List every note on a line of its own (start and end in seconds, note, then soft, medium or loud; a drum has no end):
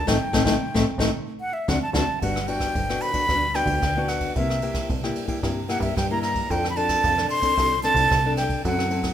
0.00 0.10 A5 medium
0.07 0.18 A1 medium
0.07 0.16 A3 loud
0.07 0.16 C4 medium
0.07 0.16 D#4 loud
0.07 1.15 G5 medium
0.07 kick medium
0.07 snare medium
0.33 0.44 A1 medium
0.33 0.42 A3 loud
0.33 0.42 C4 loud
0.33 0.42 D#4 loud
0.33 kick medium
0.33 snare medium
0.44 0.56 A1 loud
0.44 0.55 A3 medium
0.44 0.55 C4 medium
0.44 0.55 D#4 medium
0.44 kick medium
0.44 snare medium
0.74 0.85 A1 medium
0.74 0.83 A3 loud
0.74 0.83 C4 loud
0.74 0.83 D#4 loud
0.74 kick medium
0.74 snare medium
0.98 1.10 A1 loud
0.98 1.09 A3 medium
0.98 1.08 C4 medium
0.98 1.09 D#4 loud
0.98 kick medium
0.98 snare medium
1.41 1.55 F#5 medium
1.53 1.70 E5 medium
1.68 1.78 D2 loud
1.68 1.77 C4 medium
1.68 1.77 D4 medium
1.68 1.77 F#4 medium
1.68 1.82 F#5 medium
1.68 kick medium
1.68 snare medium
1.82 1.94 A5 medium
1.93 2.04 D2 loud
1.93 2.03 C4 loud
1.93 2.03 D4 medium
1.93 2.03 F#4 medium
1.93 2.20 A5 loud
1.93 kick medium
1.93 snare medium
2.22 2.67 G1 medium
2.22 2.73 G3 medium
2.22 2.38 B3 medium
2.22 2.38 D4 medium
2.22 2.38 F#4 medium
2.22 2.49 F#5 medium
2.22 kick medium
2.22 ride medium
2.36 cross-stick medium
2.48 2.73 B3 medium
2.48 2.74 D4 medium
2.48 2.74 F#4 medium
2.48 3.03 G5 loud
2.48 ride medium
2.60 kick medium
2.60 cross-stick medium
2.60 ride soft
2.75 2.98 G1 medium
2.75 3.26 D3 medium
2.75 kick medium
2.75 ride medium
2.89 3.12 B3 medium
2.89 3.12 D4 medium
2.89 3.12 F#4 medium
2.89 cross-stick medium
3.01 3.57 B5 loud
3.01 ride medium
3.14 3.24 B3 medium
3.14 3.24 D4 medium
3.14 3.24 F#4 medium
3.14 kick medium
3.14 ride medium
3.29 3.63 D2 loud
3.29 3.80 G3 medium
3.29 3.45 B3 soft
3.29 3.45 D4 soft
3.29 3.45 F#4 medium
3.29 kick medium
3.29 cross-stick medium
3.29 ride soft
3.54 3.80 B3 medium
3.54 3.81 D4 medium
3.54 3.81 F#4 medium
3.54 4.10 G5 loud
3.54 cross-stick medium
3.54 ride soft
3.65 3.78 D2 loud
3.65 kick medium
3.65 ride medium
3.82 4.28 D2 loud
3.82 4.34 D3 medium
3.82 kick medium
3.82 cross-stick medium
3.82 ride medium
3.97 4.32 B3 medium
3.97 4.32 D4 medium
3.97 4.33 F#4 medium
4.08 4.36 F#5 medium
4.08 cross-stick medium
4.08 ride soft
4.21 kick medium
4.21 ride soft
4.36 4.82 C2 medium
4.36 4.87 C3 medium
4.36 4.59 A#3 medium
4.36 4.59 E4 medium
4.36 4.59 G4 medium
4.36 4.86 E5 medium
4.36 kick medium
4.36 ride soft
4.50 cross-stick medium
4.62 4.88 A#3 medium
4.62 4.88 E4 medium
4.62 4.88 G4 medium
4.62 ride medium
4.74 kick medium
4.74 cross-stick medium
4.74 ride medium
4.89 5.13 C2 medium
4.89 5.41 G2 medium
4.89 kick medium
4.89 ride soft
5.03 5.26 A#3 medium
5.03 5.26 E4 medium
5.03 5.26 G4 medium
5.03 cross-stick medium
5.16 ride medium
5.28 5.38 A#3 medium
5.28 5.38 E4 medium
5.28 5.38 G4 medium
5.28 kick medium
5.28 ride medium
5.43 5.77 G2 medium
5.43 5.94 C3 soft
5.43 5.59 A#3 medium
5.43 5.59 E4 medium
5.43 5.59 G4 medium
5.43 kick medium
5.43 cross-stick medium
5.43 ride soft
5.68 5.94 A#3 medium
5.68 5.95 E4 medium
5.68 5.95 G4 medium
5.68 5.81 F#5 medium
5.68 cross-stick medium
5.68 ride soft
5.80 5.93 G2 loud
5.80 5.95 E5 medium
5.80 kick medium
5.80 ride soft
5.96 6.48 G2 medium
5.96 6.42 G2 medium
5.96 6.09 G5 loud
5.96 kick medium
5.96 cross-stick medium
5.96 ride soft
6.11 6.46 A#3 medium
6.11 6.47 E4 medium
6.11 6.47 G4 medium
6.11 6.22 A#5 loud
6.23 6.52 A#5 medium
6.23 cross-stick medium
6.23 ride soft
6.35 kick medium
6.35 ride soft
6.50 6.96 F2 medium
6.50 7.01 F3 medium
6.50 6.66 C4 medium
6.50 6.66 D4 medium
6.50 6.66 A4 medium
6.50 6.69 G5 medium
6.50 kick medium
6.50 ride medium
6.64 cross-stick medium
6.70 6.78 B5 medium
6.76 7.13 C4 medium
6.76 7.13 D4 medium
6.76 7.13 A4 medium
6.76 7.29 A5 loud
6.76 ride medium
6.89 kick medium
6.89 cross-stick medium
6.89 ride medium
7.04 7.27 F2 medium
7.04 7.55 C3 medium
7.04 kick medium
7.04 ride medium
7.18 7.40 C4 medium
7.18 7.40 D4 medium
7.18 7.40 A4 medium
7.18 cross-stick medium
7.30 7.80 C6 loud
7.30 ride medium
7.42 7.52 C4 medium
7.42 7.53 D4 medium
7.42 7.53 A4 medium
7.42 kick medium
7.42 ride medium
7.57 7.92 C2 medium
7.57 8.08 F3 soft
7.57 7.73 C4 soft
7.57 7.73 D4 soft
7.57 7.74 A4 medium
7.57 kick medium
7.57 cross-stick medium
7.57 ride medium
7.84 8.20 C4 medium
7.84 8.20 D4 medium
7.84 8.20 A4 medium
7.84 8.34 A5 loud
7.84 cross-stick medium
7.84 ride soft
7.94 8.07 C2 loud
7.94 kick medium
7.94 ride medium
8.11 8.57 C2 loud
8.11 8.62 C3 soft
8.11 kick medium
8.11 cross-stick medium
8.11 ride soft
8.25 8.61 C4 medium
8.25 8.61 D4 medium
8.25 8.61 A4 medium
8.37 8.62 G5 medium
8.37 cross-stick medium
8.37 ride soft
8.50 kick medium
8.50 ride soft
8.65 9.10 F#2 loud
8.65 9.13 F#3 medium
8.65 8.87 C4 medium
8.65 8.87 E4 medium
8.65 8.88 A4 medium
8.65 9.13 F#5 medium
8.65 kick medium
8.65 ride medium
8.79 cross-stick medium
8.90 9.07 C4 medium
8.90 9.07 E4 medium
8.90 9.07 A4 medium
8.90 ride soft
9.03 kick medium
9.03 cross-stick medium
9.03 ride soft